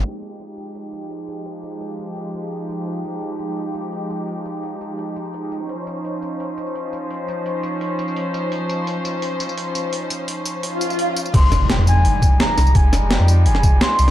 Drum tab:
CC |----------------|----------------|----------------|----------------|
HH |x-x-x-x-x-x-x-x-|x-x-x-x-x-x-x-x-|x-x-x-x-x-x-x-x-|x-x-x-x-x-x-x-x-|
TB |--x-x-x---xx--x-|--x-x-x---xx--x-|--x-x-x---xx--x-|--x-x-x---xx--x-|
SD |----------------|----------------|----------------|----------------|
BD |----------------|----------------|----------------|----------------|

CC |----------------|----------------|----------------|----------------|
HH |x-x-x-x-x-x-x-x-|x-x-x-x-x-x-x-x-|x-x-x-x-x-x-x-x-|x-x-x-x-x-x-x-x-|
TB |--x-x-x---xx--x-|--x-x-x---xx--x-|--x-x-x---xx--x-|--x-x-x---xx--xx|
SD |----------------|----------------|----------------|----------------|
BD |----------------|----------------|----------------|----------------|

CC |x---------------|----------------|
HH |x-x-x-x-x-x-x-o-|x-x-x-x-x-x-x-o-|
TB |--x-x-x---x---xx|--x-x-x---x---x-|
SD |--o-o-------o-o-|--o-o----o--o---|
BD |o-o-------o-----|o---------o-----|